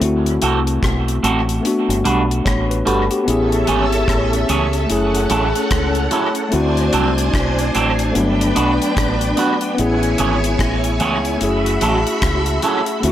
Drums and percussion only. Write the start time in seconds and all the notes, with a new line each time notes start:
0.02 closed hi-hat
0.26 closed hi-hat
0.42 closed hi-hat
0.67 closed hi-hat
0.83 kick, cross-stick, closed hi-hat
1.08 closed hi-hat
1.24 closed hi-hat
1.49 closed hi-hat
1.65 closed hi-hat
1.90 closed hi-hat
2.05 closed hi-hat
2.31 closed hi-hat
2.46 kick, cross-stick, closed hi-hat
2.71 closed hi-hat
2.87 closed hi-hat
3.11 closed hi-hat
3.28 closed hi-hat
3.52 closed hi-hat
3.67 closed hi-hat
3.92 closed hi-hat
4.08 kick, cross-stick, closed hi-hat
4.33 closed hi-hat
4.49 closed hi-hat
4.73 closed hi-hat
4.90 closed hi-hat
5.15 closed hi-hat
5.30 closed hi-hat
5.55 closed hi-hat
5.71 kick, cross-stick, closed hi-hat
5.95 closed hi-hat
6.11 closed hi-hat
6.35 closed hi-hat
6.52 closed hi-hat
6.77 closed hi-hat
6.93 closed hi-hat
7.18 closed hi-hat
7.34 kick, cross-stick, closed hi-hat
7.59 closed hi-hat
7.75 closed hi-hat
7.99 closed hi-hat
8.15 closed hi-hat
8.41 closed hi-hat
8.56 closed hi-hat
8.82 closed hi-hat
8.97 kick, cross-stick, closed hi-hat
9.21 closed hi-hat
9.37 closed hi-hat
9.61 closed hi-hat
9.78 closed hi-hat
10.03 closed hi-hat
10.18 closed hi-hat
10.44 closed hi-hat
10.59 kick, cross-stick, closed hi-hat
10.84 closed hi-hat
11.00 closed hi-hat
11.25 closed hi-hat
11.41 closed hi-hat
11.66 closed hi-hat
11.81 closed hi-hat
12.07 closed hi-hat
12.22 kick, cross-stick, closed hi-hat
12.46 closed hi-hat
12.62 closed hi-hat
12.86 closed hi-hat
13.03 closed hi-hat